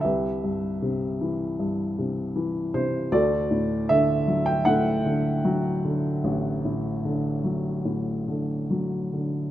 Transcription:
<<
  \new Staff \with { instrumentName = "Upright piano" } { \time 4/4 \key d \mixolydian \tempo 4 = 77 << { e''4 r2 r8 c''8 | d''4 e''8. g''16 fis''2~ | fis''2. r4 | } \\ { <g' b'>2 r2 | <fis' a'>4 a'4 a'2~ | a'2. r4 | } >> }
  \new Staff \with { instrumentName = "Upright piano" } { \clef bass \time 4/4 \key d \mixolydian c,8 g,8 c8 e8 g,8 c8 e8 c8 | d,8 a,8 d8 fis8 a,8 d8 fis8 d8 | a,,8 a,8 d8 fis8 a,8 d8 fis8 d8 | }
>>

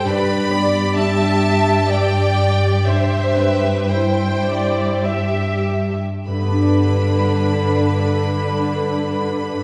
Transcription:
<<
  \new Staff \with { instrumentName = "Violin section" } { \time 3/4 \key g \major \tempo 4 = 53 b''4 a''4 g''4 | e''4 g''4 r4 | b''2. | }
  \new Staff \with { instrumentName = "Viola section" } { \time 3/4 \key g \major b'8 d''8 e''4 d''4 | c''8 b'8 c''8 d''8 e''8 r8 | <d d'>2. | }
  \new Staff \with { instrumentName = "Violin section" } { \time 3/4 \key g \major << { d''8 d''8 e''4 d''4 | c''4 c''4 e''8. r16 | <d' b'>2. | } \\ { g'2. | g'4 e'8 e'8 g'8. r16 | r2. | } >> }
  \new Staff \with { instrumentName = "Harp" } { \time 3/4 \key g \major << { <g, g'>8 b8 d'8 g'8 b'8 g'8 | g,8 c'8 e'8 g'8 c''8 g'8~ | g'2. | } \\ { r2. | r2. | <g, g b d' g' d''>2. | } >> }
  \new Staff \with { instrumentName = "Cello section" } { \clef bass \time 3/4 \key g \major g,2.~ | g,2~ g,8. r16 | g,2. | }
>>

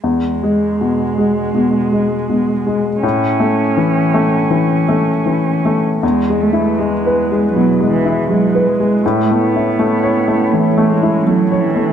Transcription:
<<
  \new Staff \with { instrumentName = "Ambient pad" } { \time 4/4 \key e \major \tempo 4 = 80 << { r1 | r1 | <gis' b'>1 | <cis' cis''>1 | } \\ { r1 | r1 | e'1~ | e'1 | } >> }
  \new Staff \with { instrumentName = "Cello" } { \clef bass \time 4/4 \key e \major gis1 | cis'2.~ cis'8. r16 | gis8 a8 gis4 fis8 e8 fis8 gis8 | a8 b4. a8 gis8 fis8 e8 | }
  \new Staff \with { instrumentName = "Upright piano" } { \clef bass \time 4/4 \key e \major e,8 gis8 b,8 gis8 b,8 gis8 b,8 gis8 | a,8 a8 e8 a8 e8 a8 e8 a8 | \tuplet 3/2 { e,8 gis8 e'8 gis8 b'8 gis8 b,8 gis8 e'8 gis8 b'8 gis8 } | \tuplet 3/2 { a,8 a8 e'8 a8 cis''8 a8 e8 a8 e'8 a8 cis''8 a8 } | }
>>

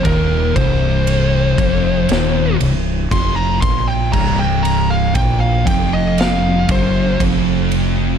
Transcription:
<<
  \new Staff \with { instrumentName = "Lead electric guitar" } { \time 4/4 \key c \minor \tempo 4 = 59 bes'8 c''2 r8 c'''16 bes''16 c'''16 g''16 | bes''16 g''16 bes''16 f''16 g''16 f''16 g''16 ees''16 f''8 c''8 r4 | }
  \new Staff \with { instrumentName = "Distorted electric guitar" } { \clef bass \time 4/4 \key c \minor ees,8 c,4 f,8 ees,8 c,8 f,8 bes,8 | c,4 bes,8 f,4 fis,8 f,4 | }
  \new Staff \with { instrumentName = "Distorted electric guitar" } { \clef bass \time 4/4 \key c \minor ees,8 c,4 f,8 ees,8 c,8 f,8 bes,8 | c,4 bes,8 f,4 fis,8 f,4 | }
  \new Staff \with { instrumentName = "Distorted electric guitar" } { \clef bass \time 4/4 \key c \minor ees,8 c,4 f,8 ees,8 c,8 f,8 bes,8 | c,4 bes,8 f,4 fis,8 f,4 | }
  \new Staff \with { instrumentName = "Fingered electric bass" } { \clef bass \time 4/4 \key c \minor ees,,8 c,,4 f,,8 ees,,8 c,,8 f,,8 bes,,8 | c,,4 bes,,8 f,,4 fis,,8 f,,4 | }
  \new DrumStaff \with { instrumentName = "Drums" } \drummode { \time 4/4 <bd cymr>8 <bd cymr>8 cymr8 <bd cymr>8 <cymr sn>8 cymr8 <bd cymr>8 <bd cymr>8 | <cymc bd>8 cymr8 <bd cymr>8 <bd cymr>8 <cymr sn>8 <bd cymr>8 <bd cymr>8 cymr8 | }
>>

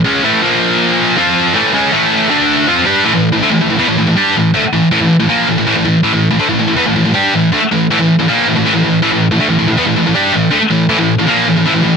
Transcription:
\new Staff \with { instrumentName = "Distorted electric guitar" } { \clef bass \time 4/4 \tempo 4 = 160 <cis gis cis'>8 <a, e a>8 <bes, f bes>2 <f c' f'>4 | <a, e a>8 <cis gis cis'>8 <a, e a>4 <d a d'>4 <f c' f'>8 <g d' g'>8 | <a, e>16 <a, e>8 <a, e>16 <d a>16 <a, e>16 <a, e>16 <a, e>16 <e b>16 <a, e>16 <a, e>16 <a, e>16 <g d' g'>8 <a, e>8 | <d a>16 r16 <a, e>8 <a, e>16 <a, e>8 <a, e>16 <bes, f bes>8 <a, e>16 <a, e>16 <a, e>16 <a, e>16 <a, e>8 |
<a, e>16 <a, e>8 <a, e>16 <d a>16 <a, e>16 <a, e>16 <a, e>16 <e b>16 <a, e>16 <a, e>16 <a, e>16 <g d' g'>8 <a, e>8 | <d a>16 r16 <a, e>8 <a, e>16 <a, e>8 <a, e>16 <bes, f bes>8 <a, e>16 <a, e>16 <a, e>16 <a, e>16 <a, e>8 | <a, e>16 <a, e>8 <a, e>16 <d a>16 <a, e>16 <a, e>16 <a, e>16 <e b>16 <a, e>16 <a, e>16 <a, e>16 <g d' g'>8 <a, e>8 | <d a>16 r16 <a, e>8 <a, e>16 <a, e>8 <a, e>16 <bes, f bes>8 <a, e>16 <a, e>16 <a, e>16 <a, e>16 <a, e>8 | }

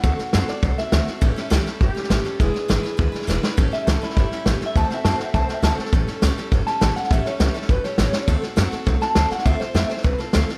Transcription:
<<
  \new Staff \with { instrumentName = "Clean electric guitar" } { \time 4/4 \key d \major \tempo 4 = 204 fis''4. d''8 r8 e''4.~ | e''2 g'2 | gis'2.~ gis'8 r8 | r8 e''8 a'8 e'8 e'4 \tuplet 3/2 { r4 e''8 } |
\tuplet 3/2 { a''8 c''8 e''8 a''8 c''8 e''8 a''8 c''8 e''8 a''8 c''8 a'8~ } | a'4. r4 a''4 fis''8 | e''8 cis''8 e''8 cis''8 b'8 cis''4. | r2 r8 a''4 fis''8 |
e''8 c''8 e''8 c''8 b'8 a'4. | }
  \new Staff \with { instrumentName = "Steel-string acoustic guitar" } { \time 4/4 \key d \major <d a c' fis' a'>8 <c' fis' a'>8 <d a c' fis' a'>8 <c' fis' a'>8 <a c' fis' a'>8 <c' fis' a'>8 <d a c' fis' a'>8 <c' fis' a'>8 | <a, e g cis' g' a'>8 <g cis' g' a'>8 <a, e g cis' g' a'>8 <g cis' g' a'>8 <g cis' g' a'>8 <g cis' g' a'>8 <a, e g cis' g' a'>8 <g cis' g' a'>8 | <e gis d' e' b'>8 <d' e' b'>8 <e gis d' e' b'>8 <d' e' b'>8 <gis d' e' b'>8 <d' e' b'>8 <e gis d' e' b'>8 <d' e' b'>8 | <a, e g cis' g' a'>8 <g cis' g' a'>8 <a, e g cis' g' a'>8 <g cis' g' a'>8 <g cis' g' a'>8 <g cis' g' a'>8 <a, e g cis' g' a'>8 <g cis' g' a'>8 |
<d a c' fis' a'>8 <c' fis' a'>8 <d a c' fis' a'>8 <c' fis' a'>8 <a c' fis' a'>8 <c' fis' a'>8 <d a c' fis' a'>8 <c' fis' a'>8 | <a, e g cis' g' a'>8 <g cis' g' a'>8 <a, e g cis' g' a'>8 <g cis' g' a'>8 <g cis' g' a'>8 <g cis' g' a'>8 <a, e g cis' g' a'>8 <g cis' g' a'>8 | <a, e g cis' g' a'>8 <g cis' g' a'>8 <a, e g cis' g' a'>8 <g cis' g' a'>8 <g cis' g' a'>8 <g cis' g' a'>8 <a, e g cis' g' a'>8 <g cis' g' a'>8 | <d a c' fis' a'>8 <c' fis' a'>8 <d a c' fis' a'>8 <c' fis' a'>8 <a c' fis' a'>8 <c' fis' a'>8 <d a c' fis' a'>8 <c' fis' a'>8 |
<d a c' f' a'>8 <c' f' a'>8 <d a c' f' a'>8 <c' f' a'>8 <a c' f' a'>8 <c' f' a'>8 <d a c' f' a'>8 <c' f' a'>8 | }
  \new Staff \with { instrumentName = "Upright bass" } { \clef bass \time 4/4 \key d \major d,8 r8 fis,8 r8 c,8 r8 d,8 r8 | a,,8 r8 cis,8 r8 g,,8 r8 a,,8 r8 | e,,8 r8 gis,,8 r8 d,8 r8 e,,8 r8 | a,,8 r8 cis,8 r8 g,,8 r8 a,,8 r8 |
d,8 r8 fis,8 r8 c,8 r8 d,8 r8 | a,,8 r8 cis,8 r8 g,,8 r8 a,,8 r8 | a,,8 r8 cis,8 r8 g,,8 r8 a,,8 r8 | d,8 r8 fis,8 r8 c,8 r8 d,8 r8 |
d,8 r8 f,8 r8 c,8 r8 d,8 r8 | }
  \new DrumStaff \with { instrumentName = "Drums" } \drummode { \time 4/4 <bd sn>8 sn8 <hhp sn>8 sn8 <bd sn>8 sn8 <hhp sn>8 sn8 | <bd sn>8 sn8 <hhp sn>8 sn8 <bd sn>8 sn16 sn16 <hhp sn>8 sn8 | <bd sn>8 sn8 <hhp sn>8 sn8 <bd sn>8 sn16 sn16 <hhp sn>8 sn8 | <bd sn>8 sn8 <hhp sn>8 sn16 sn16 <bd sn>8 sn8 <hhp sn>8 sn8 |
<bd sn>8 sn8 <hhp sn>8 sn8 <bd sn>8 sn8 <hhp sn>8 sn16 sn16 | <bd sn>8 sn8 <hhp sn>8 sn8 <bd sn>8 sn8 <hhp sn>8 sn16 sn16 | <bd sn>8 sn8 <hhp sn>8 sn16 sn16 <bd sn>8 sn8 <hhp sn>8 sn8 | <bd sn>8 sn8 <hhp sn>8 sn8 <bd sn>8 sn8 <hhp sn>8 sn16 sn16 |
<bd sn>8 sn8 <hhp sn>8 sn16 sn16 <bd sn>8 sn8 <hhp sn>8 sn8 | }
>>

